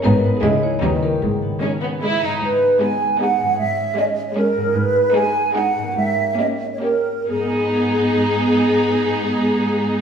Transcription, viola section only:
X:1
M:3/4
L:1/8
Q:1/4=149
K:G#m
V:1 name="Viola section" clef=bass
B,2 G,2 =G,2 | z2 G,2 G,2 | z2 G,2 G,2 | z2 G,2 G,2 |
z2 G,2 G,2 | z2 A,2 A,2 | B,6- | B,6 |]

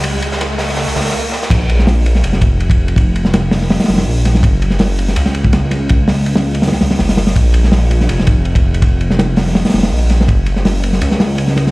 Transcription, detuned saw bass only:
X:1
M:4/4
L:1/8
Q:"Swing 16ths" 1/4=164
K:Bbm
V:1 name="Detuned saw bass" clef=bass
D,,4 z D,, z2 | B,,,4 F,,,4- | F,,,4 z F,,, B,,,2 | G,,,4 D,,4- |
D,,4 z D,, G,,,2 | B,,,4 F,,,4- | F,,,4 z F,,, B,,,2 | G,,,4 D,,4 |]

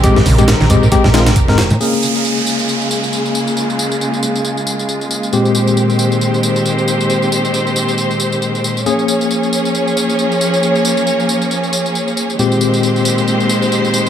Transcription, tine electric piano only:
X:1
M:4/4
L:1/16
Q:"Swing 16ths" 1/4=136
K:Bbdor
V:1 name="Tine electric piano"
[A,CG] z2 [A,CG] z2 [A,CG] z [A,CG] z [A,CF] z2 [A,CB] z2 | [B,DA]16- | [B,DA]16 | [B,,A,CG]16- |
[B,,A,CG]16 | [B,DA]16- | [B,DA]16 | [B,,A,CG]16 |]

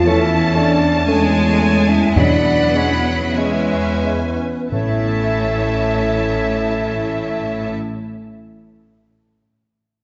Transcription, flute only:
X:1
M:4/4
L:1/16
Q:1/4=45
K:A
V:1 name="Flute"
e2 d2 c3 e d2 c2 B4 | c16 |]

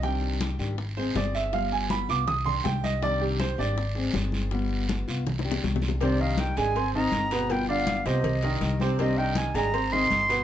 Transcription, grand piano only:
X:1
M:4/4
L:1/8
Q:1/4=161
K:Cm
V:1 name="Grand piano"
g3 z2 c d =e | f a =b d' e' c' g e | d G c d4- d | z8 |
[C,Cc] [E,e]2 [A,Aa] [Ccc'] [E,Ee]2 [=B,,=B]- | [=B,,=B] [D,Dd]2 [C,Cc]2 [E,e]2 [C,Cc] | [C,Cc] [E,e]2 [A,Aa] [Ccc'] [E,Ee]2 [=B,,=B] |]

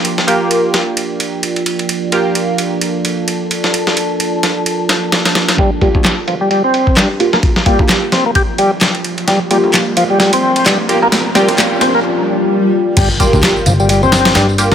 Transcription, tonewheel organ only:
X:1
M:4/4
L:1/16
Q:"Swing 16ths" 1/4=130
K:Gm
V:1 name="Tonewheel organ" clef=bass
z16 | z16 | z16 | G, z G, z3 F, G, G, C3 G, z2 B, |
z2 G, z3 C B, G z G, z4 z | G, z G, z3 F, G, G, C3 G, z2 B, | z2 G, z3 C B, z8 | G, z G, z3 F, G, G, C3 G, z3 |]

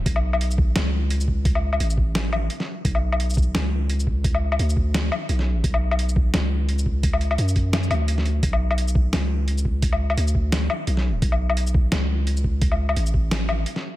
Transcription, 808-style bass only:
X:1
M:4/4
L:1/8
Q:"Swing 16ths" 1/4=172
K:Bm
V:1 name="808-style bass" clef=bass
B,,,4 C,,4- | C,,2 A,,,4 z2 | B,,,4 C,,4- | C,,2 D,,3 z B,,,2 |
B,,,4 C,,4- | C,,2 F,,3 D,,3 | B,,,4 C,,4- | C,,2 D,,3 z B,,,2 |
B,,,4 C,,4- | C,,2 A,,,4 z2 |]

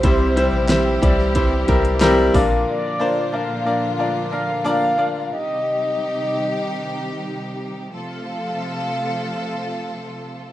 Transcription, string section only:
X:1
M:4/4
L:1/8
Q:1/4=91
K:F
V:1 name="String section" clef=bass
[C,E,G,EG]6- [C,E,G,EG] [B,,D,F,DF]- | [B,,D,F,DF]8 | [C,_E,G,_EG]8 | [C,F,A,FA]8 |]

